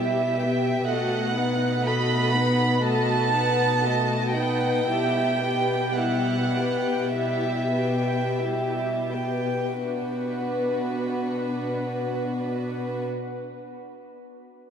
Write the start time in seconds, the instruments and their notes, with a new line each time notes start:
Already playing: cello section B2, violin section G4 E5
0.00 viola section G3 E4
0.40 viola section B3 G4, violin section B4 G5
0.87 cello section B2, viola section A3 F#4, violin section A4 D#5 F#5
1.36 viola section B3 D#4, violin section B4 F#5
1.84 viola section A3 F#4, violin section A4 D#5 B5
2.33 viola section B3 D#4, violin section B4 F#5
2.82 viola section A3 F#4, violin section A4 D#5 A5
3.32 viola section B3 D#4, violin section B4 F#5
3.83 viola section A3 F#4, violin section A4 D#5
4.35 viola section B3 D#4, violin section B4 F#5 G5
4.88 cello section B2, viola section G3 E4, violin section G4 E5
5.42 viola section B3 G4, violin section B4 G5
5.97 viola section G3 E4, violin section G4 E5 F#5
6.54 viola section B3 G4, violin section B4 G5
7.13 viola section G3 E4, violin section G4 E5
7.75 viola section B3 G4, violin section B4 G5
8.42 viola section G3 E4, violin section G4 E5
9.12 viola section B3 G4, violin section B4 G5
9.82 cello section B2, viola section B3 D4, violin section F#4 B4